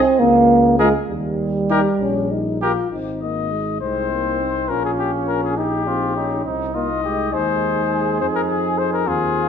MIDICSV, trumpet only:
0, 0, Header, 1, 2, 480
1, 0, Start_track
1, 0, Key_signature, -4, "major"
1, 0, Tempo, 603015
1, 867, Time_signature, 6, 3, 24, 8
1, 3274, Tempo, 583090
1, 7698, End_track
2, 0, Start_track
2, 0, Title_t, "Trumpet"
2, 0, Program_c, 0, 56
2, 628, Note_on_c, 0, 68, 66
2, 711, Note_off_c, 0, 68, 0
2, 1352, Note_on_c, 0, 67, 56
2, 1437, Note_off_c, 0, 67, 0
2, 2083, Note_on_c, 0, 67, 54
2, 2169, Note_off_c, 0, 67, 0
2, 3034, Note_on_c, 0, 60, 44
2, 3758, Note_on_c, 0, 61, 45
2, 3770, Note_off_c, 0, 60, 0
2, 4477, Note_on_c, 0, 63, 42
2, 4489, Note_off_c, 0, 61, 0
2, 4713, Note_off_c, 0, 63, 0
2, 4718, Note_on_c, 0, 65, 44
2, 4954, Note_off_c, 0, 65, 0
2, 4959, Note_on_c, 0, 63, 43
2, 5188, Note_off_c, 0, 63, 0
2, 5193, Note_on_c, 0, 63, 45
2, 5441, Note_on_c, 0, 65, 42
2, 5454, Note_off_c, 0, 63, 0
2, 5676, Note_off_c, 0, 65, 0
2, 5681, Note_on_c, 0, 67, 45
2, 5920, Note_on_c, 0, 68, 56
2, 5932, Note_off_c, 0, 67, 0
2, 7354, Note_on_c, 0, 65, 66
2, 7366, Note_off_c, 0, 68, 0
2, 7698, Note_off_c, 0, 65, 0
2, 7698, End_track
0, 0, End_of_file